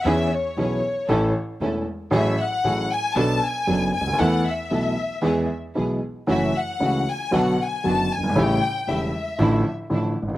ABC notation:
X:1
M:4/4
L:1/16
Q:1/4=116
K:A
V:1 name="Violin section"
e2 c8 z6 | e2 f4 g2 a2 g4 g2 | f2 e8 z6 | e2 f4 g2 f2 g2 a2 g2 |
=g4 e6 z6 |]
V:2 name="String section"
[CEG]2 z2 [CEG]2 z2 [CEA]2 z2 [CEA]2 z2 | [A,FG]2 z2 [A,FG]2 z2 [B,DA]2 z2 [B,DA]2 z2 | [B,EA]2 z2 [B,EA]2 z2 [B,EG]2 z2 [B,EG]2 z2 | [A,EF]2 z2 [A,EF]2 z2 [B,DF]2 z2 [B,DF]2 z2 |
[A,C=G]2 z2 [A,CG]2 z2 [=F,DE]2 z2 [F,DE]2 z2 |]
V:3 name="Grand piano" clef=bass
[E,,E,B,CG]2 z2 [B,,,B,,E,B,CG]2 z2 [A,,,A,,E,A,CA]2 z2 [E,,,E,,E,A,CA]2 z2 | [A,,,A,,F,A,CG]2 z2 [A,,,A,,F,A,CG]2 z2 [B,,,B,,F,B,DA]2 z2 [F,,,F,,F,B,DA]2 z/2 C,,/2 D,,/2 ^D,,/2 | [E,,E,A,B,A]2 z2 [B,,,B,,E,A,B,A]2 z2 [E,,E,G,B,G]2 z2 [B,,,B,,E,G,B,G]2 z2 | [F,,E,F,A,CF]2 z2 [C,,C,E,A,CF]2 z2 [B,,,B,,D,F,B,F]2 z2 [F,,,F,,D,F,B,F]2 z/2 F,,,/2 =G,,,/2 ^G,,,/2 |
[A,,,A,,C,=G,A,E]2 z2 [E,,,E,,C,G,A,E]2 z2 [A,,,A,,D,=F,A,E]2 z2 [A,,,A,,D,F,A,E]2 z/2 ^G,,,/2 A,,,/2 _B,,,/2 |]
V:4 name="Upright bass" clef=bass
E,,3/2 z2 z/2 B,,,3/2 z2 z/2 A,,,3/2 z2 z/2 E,,,3/2 z2 z/2 | A,,,3/2 z2 z/2 A,,,3/2 z2 z/2 B,,,3/2 z2 z/2 F,,,3/2 z C,,/2 D,,/2 ^D,,/2 | E,,3/2 z2 z/2 B,,,3/2 z2 z/2 E,,3/2 z2 z/2 B,,,3/2 z2 z/2 | F,,,3/2 z2 z/2 C,,3/2 z2 z/2 B,,,3/2 z2 z/2 F,,,3/2 z F,,,/2 =G,,,/2 ^G,,,/2 |
A,,,3/2 z2 z/2 E,,,3/2 z2 z/2 A,,,3/2 z2 z/2 A,,,3/2 z G,,,/2 A,,,/2 z/2 |]